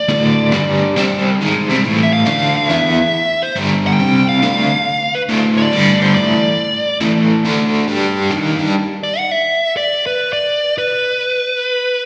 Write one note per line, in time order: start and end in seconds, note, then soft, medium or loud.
0.00 1.36 D5 medium
0.09 0.52 D2 medium
0.09 0.52 A2 loud
0.09 0.52 D3 loud
0.53 0.96 G2 medium
0.53 0.96 D3 medium
0.53 0.96 G3 medium
0.96 1.39 C3 medium
0.96 1.40 G3 medium
0.96 1.40 C4 loud
1.40 1.68 G#2 medium
1.40 1.68 D#3 medium
1.40 1.69 G#3 medium
1.69 1.82 C3 medium
1.69 1.83 G3 medium
1.69 1.83 C4 medium
1.83 2.26 A2 medium
1.83 2.25 E3 medium
1.83 2.25 A3 medium
2.03 2.12 E5 medium
2.13 2.56 F5 medium
2.25 2.69 D3 medium
2.25 2.69 A3 medium
2.25 2.69 D4 loud
2.56 2.67 F5 loud
2.67 2.98 E3 medium
2.67 2.98 B3 loud
2.67 2.98 E4 medium
2.67 3.45 E5 loud
3.43 3.55 C5 loud
3.56 3.99 G2 medium
3.56 3.99 D3 medium
3.56 3.99 G3 loud
3.87 4.28 G5 loud
3.99 4.42 C3 medium
3.99 4.42 G3 medium
3.99 4.43 C4 loud
4.29 5.18 F5 loud
4.43 4.71 D3 loud
4.43 4.71 A3 loud
4.43 4.71 D4 medium
5.15 5.20 B4 medium
5.29 5.72 D2 medium
5.29 5.73 A2 medium
5.29 5.73 D3 loud
5.58 5.98 D5 medium
5.72 6.15 G2 medium
5.72 6.15 D3 medium
5.72 6.15 G3 loud
6.02 6.15 C5 medium
6.15 6.43 A2 loud
6.15 6.44 E3 loud
6.15 6.44 A3 loud
6.15 6.98 D5 medium
7.01 7.44 A2 medium
7.01 7.44 E3 medium
7.01 7.44 A3 medium
7.45 7.87 D3 medium
7.45 7.87 A3 medium
7.45 7.87 D4 medium
7.88 8.31 G3 medium
7.88 8.31 D4 medium
7.88 8.31 G4 loud
8.30 8.59 D#3 medium
8.30 8.59 A#3 medium
8.30 8.60 D#4 medium
8.59 8.73 G3 medium
8.59 8.74 D4 medium
8.59 8.74 G4 medium
9.03 9.18 D5 medium
9.18 9.31 F#5 medium
9.31 9.73 E5 medium
9.77 10.04 D5 medium
10.06 10.33 B4 medium
10.33 10.74 D5 medium
10.78 12.02 B4 medium